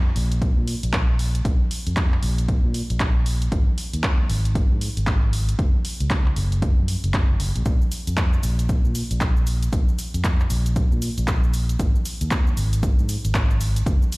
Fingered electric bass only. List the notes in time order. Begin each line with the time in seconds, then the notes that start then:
Already playing: F2
0.16 A#1
0.57 A#2
0.83 A#1
1.45 A#1
1.87 F2
2.23 A#1
2.64 A#2
2.90 A#1
3.52 G#1
3.93 D#2
4.30 G#1
4.71 G#2
4.97 G#1
5.59 F#1
6.00 C#2
6.36 F#1
6.78 F#2
7.04 F#1
7.30 F#1
7.40 F#1
7.56 A#1
8.07 F2
8.43 A#1
8.85 A#2
9.11 A#1
9.73 A#1
10.14 F2
10.50 A#1
10.92 A#2
11.18 A#1
11.80 G#1
12.21 D#2
12.57 G#1
12.99 G#2
13.25 G#1
13.86 F#1